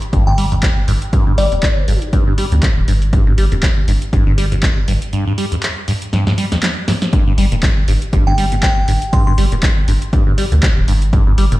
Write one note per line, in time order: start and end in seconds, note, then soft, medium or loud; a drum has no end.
0.02 closed hi-hat medium
0.13 0.23 G1 medium
0.13 0.24 G2 medium
0.13 kick loud
0.13 closed hi-hat soft
0.27 0.83 G1 loud
0.27 0.33 G2 medium
0.27 0.46 G5 medium
0.38 0.46 G3 medium
0.38 open hi-hat loud
0.52 0.56 F2 medium
0.52 closed hi-hat medium
0.63 kick loud
0.63 clap loud
0.63 closed hi-hat soft
0.88 0.98 G1 medium
0.88 0.93 G2 medium
0.88 open hi-hat medium
1.02 closed hi-hat medium
1.13 1.25 G2 medium
1.13 kick loud
1.13 closed hi-hat medium
1.27 1.33 G2 medium
1.38 1.48 G1 loud
1.38 1.46 G3 medium
1.38 1.88 D5 medium
1.38 open hi-hat loud
1.52 1.60 F1 medium
1.52 1.56 F2 medium
1.52 closed hi-hat medium
1.63 kick loud
1.63 clap loud
1.63 closed hi-hat soft
1.88 1.98 G1 medium
1.88 1.93 G2 medium
1.88 open hi-hat medium
2.02 closed hi-hat medium
2.13 2.25 G2 medium
2.13 kick loud
2.13 closed hi-hat medium
2.27 2.33 G2 medium
2.38 2.46 G3 medium
2.38 open hi-hat loud
2.52 2.60 D2 medium
2.52 2.56 F2 medium
2.52 closed hi-hat medium
2.63 kick loud
2.63 clap loud
2.63 closed hi-hat medium
2.77 2.85 D1 loud
2.88 3.33 G1 medium
2.88 2.93 G2 medium
2.88 open hi-hat medium
3.02 closed hi-hat medium
3.13 3.24 G2 medium
3.13 kick loud
3.13 closed hi-hat medium
3.27 3.33 G2 medium
3.38 3.48 G1 loud
3.38 3.46 G3 medium
3.38 open hi-hat medium
3.52 3.60 F1 loud
3.52 3.56 F2 medium
3.52 closed hi-hat medium
3.63 kick loud
3.63 clap loud
3.63 closed hi-hat medium
3.88 3.98 G1 medium
3.88 3.93 G2 medium
3.88 open hi-hat medium
4.02 closed hi-hat medium
4.13 4.23 G1 medium
4.13 4.24 G2 medium
4.13 kick loud
4.13 closed hi-hat medium
4.27 4.83 G1 loud
4.27 4.33 G2 medium
4.38 4.46 G3 medium
4.38 open hi-hat loud
4.52 4.56 F2 medium
4.52 closed hi-hat medium
4.63 kick loud
4.63 clap loud
4.63 closed hi-hat medium
4.88 4.98 G1 medium
4.88 4.93 G2 medium
4.88 open hi-hat medium
5.02 closed hi-hat medium
5.13 5.24 G2 medium
5.13 closed hi-hat medium
5.27 5.33 G2 medium
5.38 5.46 G3 medium
5.38 open hi-hat medium
5.52 5.56 F2 medium
5.52 closed hi-hat medium
5.63 clap loud
5.63 closed hi-hat medium
5.88 5.93 G2 medium
5.88 open hi-hat medium
6.02 closed hi-hat medium
6.13 6.24 G2 medium
6.13 snare medium
6.13 closed hi-hat medium
6.27 6.33 G2 medium
6.27 snare medium
6.38 6.46 G3 medium
6.38 open hi-hat loud
6.52 6.56 F2 medium
6.52 snare medium
6.52 closed hi-hat medium
6.63 snare medium
6.63 clap loud
6.63 closed hi-hat medium
6.88 6.93 G2 medium
6.88 snare loud
6.88 open hi-hat medium
7.02 snare medium
7.02 closed hi-hat medium
7.13 7.25 G2 medium
7.13 kick loud
7.13 closed hi-hat medium
7.27 7.33 G2 medium
7.38 7.48 G1 loud
7.38 7.46 G3 medium
7.38 open hi-hat loud
7.52 7.60 F1 loud
7.52 7.56 A#2 medium
7.52 closed hi-hat medium
7.63 kick loud
7.63 clap loud
7.63 closed hi-hat medium
7.88 7.98 G1 medium
7.88 7.93 G2 medium
7.88 open hi-hat medium
8.02 closed hi-hat medium
8.13 8.23 G1 medium
8.13 8.24 G2 medium
8.13 kick loud
8.13 closed hi-hat medium
8.27 8.83 G1 loud
8.27 8.33 G2 medium
8.27 8.46 G5 medium
8.38 8.46 G3 medium
8.38 open hi-hat loud
8.52 8.56 A#2 medium
8.52 closed hi-hat medium
8.63 9.11 G5 medium
8.63 kick loud
8.63 clap loud
8.63 closed hi-hat medium
8.88 8.98 G1 medium
8.88 8.93 G2 medium
8.88 open hi-hat medium
9.02 closed hi-hat medium
9.13 9.24 G2 medium
9.13 9.22 C6 medium
9.13 kick loud
9.13 closed hi-hat medium
9.27 9.33 G2 medium
9.27 9.34 C6 medium
9.38 9.48 G1 loud
9.38 9.46 G3 medium
9.38 open hi-hat loud
9.52 9.60 F1 loud
9.52 9.56 A#2 medium
9.52 closed hi-hat medium
9.63 kick loud
9.63 clap loud
9.63 closed hi-hat medium
9.88 9.98 G1 medium
9.88 9.93 G2 medium
9.88 open hi-hat medium
10.02 closed hi-hat medium
10.13 10.24 G2 medium
10.13 kick loud
10.13 closed hi-hat medium
10.27 10.33 G2 medium
10.38 10.46 G3 medium
10.38 open hi-hat loud
10.52 10.60 D2 medium
10.52 10.56 A#2 medium
10.52 closed hi-hat medium
10.63 kick loud
10.63 clap loud
10.63 closed hi-hat medium
10.77 10.85 D1 loud
10.88 11.33 G1 medium
10.88 10.93 G2 medium
10.88 open hi-hat medium
11.02 closed hi-hat medium
11.13 11.24 G2 medium
11.13 kick loud
11.13 closed hi-hat soft
11.27 11.33 G2 medium
11.38 11.48 G1 loud
11.38 11.46 G3 medium
11.38 open hi-hat loud
11.52 11.60 F1 loud
11.52 11.56 A#2 medium
11.52 closed hi-hat medium